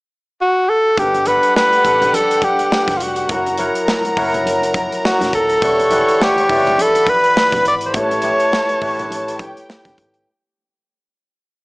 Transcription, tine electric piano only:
0.97 G3 D4 A4 B4 F#5
1.26 G3 D4 A4 B4 F#5
1.84 G3 D4 A4 B4 F#5
3.30 F#3 E4 A#4 C#5 F#5
3.58 F#3 E4 A#4 C#5 F#5
4.17 F#3 E4 A#4 C#5 F#5
5.62 E3 E4 G4 D5 F#5
5.90 E3 E4 G4 D5 F#5
6.49 E3 E4 G4 D5 E5
6.58 F#5
7.95 A3 E4 G4 B4 C#5
8.23 A3 E4 G4 B4 C#5
8.81 A3 E4 G4 B4 C#5

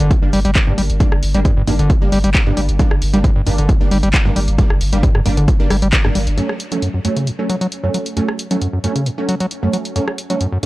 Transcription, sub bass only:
0.00 G1
0.22 G1
0.33 G1
0.45 G1
0.67 G1
0.78 G1
0.90 G1
1.12 G1
1.23 G1
1.34 G1
1.57 G1
1.67 G1
1.79 G1
2.02 G1
2.12 G1
2.24 G1
2.46 G1
2.57 G1
2.69 G1
2.91 G1
3.02 G1
3.14 G1
3.36 G1
3.47 G1
3.58 G1
3.81 G1
3.91 G1
4.03 G1
4.25 G1
4.36 G1
4.48 G1
4.70 G1
4.81 G1
4.93 G1
5.15 G1
5.26 G1
5.37 G1
5.60 G1
5.70 G1
5.82 G1
6.05 G1
6.15 G1
6.27 G1

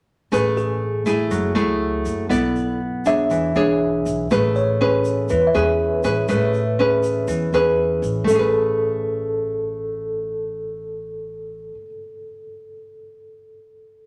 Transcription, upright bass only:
0.32 A1
1.31 F#1
1.56 C#2
2.06 F#1
2.30 B1
3.30 E2
3.56 B1
4.06 B1
4.31 A1
5.31 E2
5.55 E2
6.04 A1
6.29 A1
7.28 E2
7.53 E2
8.02 A1
8.27 A1

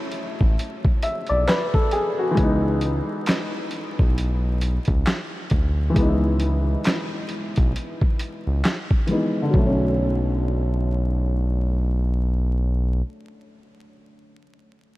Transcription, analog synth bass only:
0.41 A1
1.30 B1
2.38 C#2
4.00 B1
4.88 C#2
5.52 D2
5.97 C#2
7.58 B1
8.47 C#2
9.54 B1

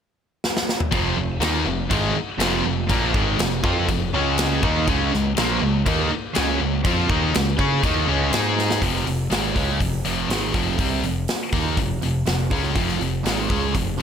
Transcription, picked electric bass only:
0.93 F1
1.17 F1
1.40 D#2
1.66 F1
1.91 G#1
2.15 muted picked electric bass stroke
2.39 F1
2.65 F1
2.90 A#1
3.15 G#1
3.39 F1
3.64 F2
3.89 F1
4.14 C#2
4.64 D#2
4.88 C#2
5.14 C#2
5.38 A#1
5.62 C#2
5.87 D#2
6.13 muted picked electric bass stroke
6.38 C#2
6.62 C#2
6.85 F2
7.09 D#2
7.36 C#2
7.58 C#3
7.83 D#2
8.08 C#2
8.32 G#2
8.82 F1
9.06 F1
9.31 G#1
9.56 C#2
9.80 F1
10.05 F1
10.28 G#1
10.54 F1
10.78 C2
11.03 F1
11.53 D#2
11.77 F1
12.02 F1
12.27 F1
12.51 C#2
12.76 F1
13.01 F1
13.24 G#1
13.50 C#2
13.75 F1

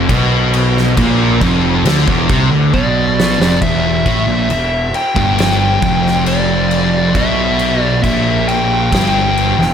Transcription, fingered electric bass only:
0.09 B1
0.97 A#1
1.41 F1
1.86 D2
2.07 E1
2.29 C2
2.52 D2
2.74 B1
3.40 F1
3.62 E1
4.06 A1
4.27 A#1
4.50 E1
5.16 G1
5.82 F1
7.15 B1
8.04 A#1
8.92 G1
9.58 E1

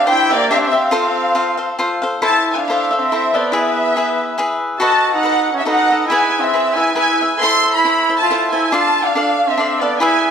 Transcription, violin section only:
0.09 G5
0.32 D5
0.51 E5 F5
0.64 E5
0.76 F5
2.24 A5
2.52 G#5
2.59 F5
2.97 F5
3.04 E5
3.36 D5
3.56 E5
4.81 A5
5.15 F#5
5.59 E5
5.67 F#5
6.10 G#5
6.42 E5
6.76 G#5
6.96 G#5
7.41 C6
7.75 B5
8.18 A5
8.53 G#5
8.74 A5
9.06 F5
9.49 E5
9.80 D5
10.01 G#5

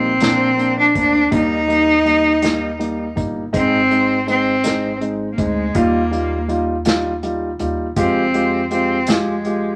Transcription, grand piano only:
Already playing: A#3 D#4
0.21 A#3 C4 D4
0.57 A#3 C4 D4
0.95 A#3 C4 D4
1.31 G3 A#3 D#4
1.68 G3 A#3 D#4
2.05 G3 A#3 D#4
2.42 G3 A#3 D#4
2.79 G3 A#3 D#4
3.16 G3 A#3 D#4
3.53 G#3 C4 D#4
3.90 G#3 C4 D#4
4.27 G#3 C4 D#4
4.64 G#3 C4 D#4
5.01 G#3 C4 D#4
5.38 G#3 C4 D#4
5.75 G3 D#4 F4
6.11 G3 D#4 F4
6.48 G3 D#4 F4
6.85 G3 D#4 F4
7.23 G3 D#4 F4
7.60 G3 D#4 F4
7.96 G#3 F4 G4
8.34 G#3 F4 G4
8.71 G#3 F4 G4
9.08 G#3 F4 G4
9.45 G#3 F4 G4

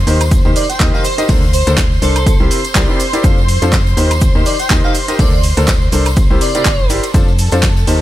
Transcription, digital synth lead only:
0.56 D5
0.69 G5
0.94 F5
1.05 C5
1.53 C5
2.02 A4
4.46 D5
4.60 G5
4.84 F5
5.19 D5
5.33 D5
6.41 D5

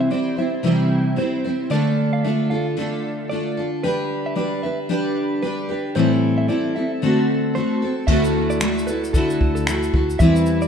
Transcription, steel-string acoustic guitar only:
Already playing: C3 E3 E4 C5
0.10 G3 C4 E4 C5
0.37 G3 C4 E4 C5
0.63 C3 E3 G3 C4 E4 C5
1.16 G3 C4 E4 C5
1.44 G3 C4 E4 C5
1.70 D3 A3 D4 F4 A4
2.24 A3 D4 F4 A4
2.51 D4 F4 A4
2.77 D3 A3 D4 F4 A4
3.31 A3 D4 F4 A4
3.57 D4 F4 A4
3.83 G3 D4 G4 B4
4.35 G3 D4 G4 B4
4.63 D4 G4 B4
4.89 G3 D4 G4 B4
5.42 G3 D4 G4 B4
5.69 D4 G4 B4
5.95 A2 E3 G3 C4 E4 A4
6.48 G3 C4 E4 A4
6.76 G3 C4 E4 A4
7.02 D3 A3 C4 F#4 A4
7.56 A3 C4 F#4 A4
7.82 C4 F#4 A4
8.08 D3 A3 E4 F#4 A4
8.60 A3 E4 F#4 A4
8.88 E4 F#4 A4
9.14 D3 A3 E4 F#4 A4
9.67 A3 E4 F#4 A4
9.94 E4 F#4 A4
10.21 E3 G3 C4 E4 B4

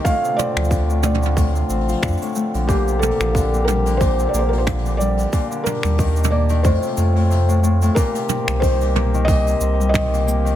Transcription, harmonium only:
0.05 D3 A3 C4 F4
2.69 A#3 G4
5.32 A#3 D4
6.65 A3 C4 F4
7.96 D#3 A#3 C4 G4

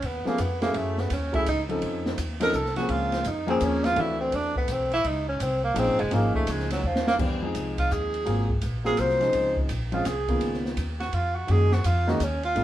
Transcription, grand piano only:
0.25 F3 A3 B3 C#4 G#4
0.61 F#3 A3 C#4 E4 G#4
1.32 F#3 A3 C#4 E4 G#4
1.69 F3 C4 C#4 D#4 A4
2.40 F3 C4 C#4 D#4 A4
2.76 F3 A#3 C4 C#4 G#4
3.47 F3 A#3 C4 C#4 G#4
3.96 E3 A3 C4 D4 F#4
5.74 F3 A#3 C#4 D#4 G#4
6.11 F3 A#3 C#4 D#4 G#4
7.18 E3 G3 B3 D4 G4
7.42 F3 G#3 C4 D#4 G#4
8.25 F#3 A#3 C4 F4 G#4
8.85 F#3 A#3 C4 F4 A#4
9.20 F3 G#3 C4 C#4 D#4
9.92 F3 G#3 C4 C#4 G#4
10.28 D#3 A#3 B3 C#4 F4
11.47 D#3 G#3 A#3 C#4 F#4
12.07 D#3 G#3 A#3 C#4 F#4
12.55 D3 G#3 A#3 B3 F4

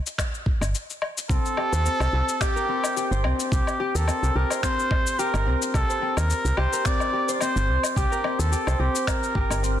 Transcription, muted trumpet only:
1.30 A4
2.41 G4
3.53 G4
3.96 A4
4.36 A#4
4.64 C5
5.19 A#4
5.75 A4
6.18 A#4
6.58 C5
6.86 D5
7.34 D5
7.41 C5
7.97 G4
8.39 A4
8.80 G4
9.08 A#4

